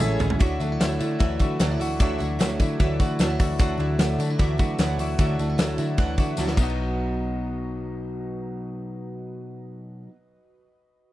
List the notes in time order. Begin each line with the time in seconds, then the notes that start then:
Already playing: A3 C#4 G#4 D#5 F#5
0.00 A1 E3 G#3 C#4 E4 G#4 A4 C#5 E5
0.19 A1 G#3 C#4 E4 G#4 A4 C#5 E5, floor tom, tambourine
0.30 floor tom
0.39 D2 D3 F#3 A3 E4 F#4 D5 E5, kick, ride, tambourine
0.60 D2 F#3 A3 D4 E4 F#4 D5 E5, ride, tambourine
0.72 E4
0.80 D2 D3 F#3 A3 E4 F#4 D5 E5, snare, ride, tambourine
0.99 D3 A3 E4 F#4 D5 E5, ride, tambourine
1.03 F#3
1.19 D2 D3 E3 F#3 A3 F#4 D5 E5, kick, ride
1.23 E4
1.39 D3 F#3 A3 E4 F#4 D5 E5, kick, ride, tambourine
1.59 D2 D3 F#3 A3 D4 E4 F#4 D5 F#5, snare, ride, tambourine
1.72 E4
1.79 D2 A3 E4 F#4 D5 E5, open hi-hat, ride, tambourine
1.84 F#3
2.00 D2 D3 F#3 A3 E4 F#4 D5 E5, kick, hi-hat pedal, ride, tambourine
2.18 D2 F#3 A3 E4 F#4 D5 E5, ride, tambourine
2.39 D2 D3 F#3 A3 E4 F#4 D5 E5, snare, ride, tambourine
2.59 D3 F#3 A3 E4 F#4 D5 E5, kick, ride, tambourine
2.80 D2 D3 E3 F#3 A3 E4 F#4 D5 E5, kick, ride, tambourine
3.00 D3 F#3 A3 E4 F#4 D5 F#5, kick, ride, tambourine
3.19 D2 D3 F#3 A3 D4 E4 F#4 D5 E5, snare, ride, tambourine
3.30 E4
3.39 D2 F#3 A3 E4 F#4 D5 E5, kick, open hi-hat, ride, tambourine
3.58 D2 D3 F#3 A3 E4 F#4 D5 F#5, kick, hi-hat pedal, ride, tambourine
3.78 D2 F#3 A3 E4 F#4 D5 E5, ride
3.99 D2 D3 F#3 A3 E4 F#4 D5 E5, snare, ride, tambourine
4.19 D3 F#3 A3 D4 E4 F#4 D5 E5, ride, tambourine
4.30 E4
4.39 D2 D3 E3 F#3 A3 E4 F#4 D5 E5, kick, ride, tambourine
4.58 D3 F#3 A3 E4 F#4 D5 E5, kick, ride, tambourine
4.78 D2 D3 F#3 A3 E4 F#4 D5 F#5, snare, ride, tambourine
4.98 D2 F#3 A3 E4 F#4 D5 E5, open hi-hat, ride, tambourine
5.18 D2 D3 F#3 A3 E4 F#4 D5 E5, kick, hi-hat pedal, ride, tambourine
5.39 D2 F#3 A3 D4 E4 F#4 D5 E5, ride, tambourine
5.50 E4
5.58 D3 F#3 A3 E4 F#4 D5 E5, snare, ride, tambourine
5.78 D3 F#3 A3 E4 F#4 D5 E5, ride, tambourine
5.98 D2 D3 E3 F#3 A3 E4 F#4 D5 F#5, kick, ride
6.18 D3 F#3 A3 E4 F#4 D5 E5, kick, ride, tambourine
6.37 D2 D3 F#3 A3 D4 E4 F#4 D5 E5, snare, tambourine
6.47 E4, snare
6.52 B2
6.57 B1 B2 F#3 B3 F#4 B4, kick, crash, tambourine
6.61 D#4 F#4 D#5
6.65 B3
6.70 D#4